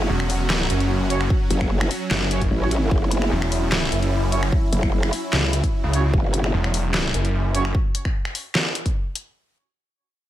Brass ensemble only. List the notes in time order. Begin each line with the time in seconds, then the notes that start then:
1.10 C#4 F#4 C#5
2.31 C#4 F#4 C#5
2.61 C#4 F#4 C#5
4.32 C#4 F#4 C#5
5.93 C#4 F#4 C#5
7.54 C#4 F#4 C#5